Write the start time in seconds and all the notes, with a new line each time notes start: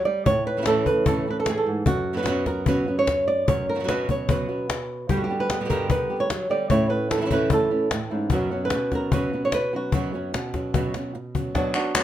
0.05 G3 D5
0.25 A2 C#5, muted nylon-string guitar stroke, cajon bass
0.46 B4, cajon slap
0.57 E3 A3 C#4 E4
0.62 E3 A3 C#4 E4, cajon slap
0.66 A2 E3 A3 C#4 E4 A4
0.86 A3 C#4 E4 B4, cajon bass
1.06 A2 E3 A3 C#4 E4 A4, cajon bass
1.27 A3 C#4 E4 B4
1.40 A4
1.46 A2 G#4, muted nylon-string guitar stroke, cajon slap
1.58 A4
1.66 G#2
1.86 F#2 F#4, muted nylon-string guitar stroke, cajon bass
2.13 B2 F#3 B3 C#4 F#4 B4
2.18 B2 F#3 B3 C#4 F#4
2.23 B2 F#3 B3 C#4 F#4, cajon slap
2.27 F#2 B2 F#3 B3 C#4 F#4
2.46 F#3 B3 C#4 F#4 A#4, cajon bass, cajon slap
2.66 F#2 B2 F#3 B3 C#4 F#4 B4, cajon bass
2.88 F#3 B3 C#4 F#4
2.99 C#5
3.07 muted nylon-string guitar stroke, cajon bass, cajon slap
3.28 D5
3.48 F#2 C#5, muted nylon-string guitar stroke, cajon bass
3.68 A#4, cajon slap
3.75 B2 F#3 B3 C#4 F#4
3.79 B2 F#3 B3 C#4 F#4
3.84 B2 F#3 B3 C#4 F#4
3.88 F#2 B2 F#3 B3 C#4 F#4 B4, cajon slap
4.09 F#3 B3 C#4 F#4 C#5, cajon bass
4.29 F#2 B2 F#3 B3 C#4 F#4 B4, cajon bass
4.48 F#3 B3 C#4 F#4
4.69 muted nylon-string guitar stroke, cajon slap
5.09 G2 B2 D3 G3 B3 G4, cajon bass
5.17 F#4
5.24 G4
5.30 D3 G3 B3 D4 G4
5.40 B4
5.50 D3 G3 B3 G4, cajon slap
5.61 B2 D3 G3 B3 G4
5.65 B2 D3 G3 B3 G4
5.69 G2 B2 D3 G3 B3 G4 A#4, cajon bass
5.89 D3 G3 B3 G4 B4, cajon bass
6.10 D3 G3 B3 G4
6.20 C#5
6.29 F#3, muted nylon-string guitar stroke, cajon slap
6.49 D3 G3 B3 G4 D5, cajon slap
6.70 A2 E3 A3 C#4 E4 C#5, cajon bass
6.90 A3 C#4 E4 B4, cajon slap
7.10 E3 A3 C#4 E4 A4, cajon slap
7.17 E3 A3 C#4 E4
7.21 E3 A3 C#4 E4
7.25 E3 A3 C#4 E4
7.30 A2 E3 A3 C#4 E4 B4, cajon bass
7.50 E3 A3 C#4 E4 A4, cajon bass
7.71 A3 C#4 E4
7.91 A2, muted nylon-string guitar stroke, cajon slap
8.11 G#2 A3 C#4 E4
8.30 F#2 B2 F#3 B3 C#4 F#4, cajon bass
8.51 F#3 B3 C#4 F#4
8.65 B4
8.70 B2, muted nylon-string guitar stroke, cajon slap
8.92 F#3 B3 C#4 F#4 A#4, cajon bass, cajon slap
9.12 F#2 B2 F#3 B3 C#4 F#4 B4, cajon bass
9.33 F#3 B3 C#4 F#4
9.45 C#5
9.52 B4, muted nylon-string guitar stroke, cajon slap
9.73 F#3 B3 C#4 F#4
9.92 F#2 B2 F#3 B3 C#4 F#4, cajon bass
10.13 F#3 B3 C#4 F#4, cajon slap
10.33 B2, muted nylon-string guitar stroke, cajon slap
10.54 F#3 B3 C#4 F#4, cajon bass, cajon slap
10.74 F#2 B2 F#3 B3 C#4 F#4, cajon bass
10.94 F#3 B3 C#4 F#4, cajon slap
11.15 muted nylon-string guitar stroke
11.35 F#3 B3 C#4 F#4, cajon bass
11.55 B2 F#3 B3 D4 F#4, cajon bass, cajon slap
11.74 B3 D4 F#4, clap
11.95 F#3 B3 D4 F#4, cajon slap, clap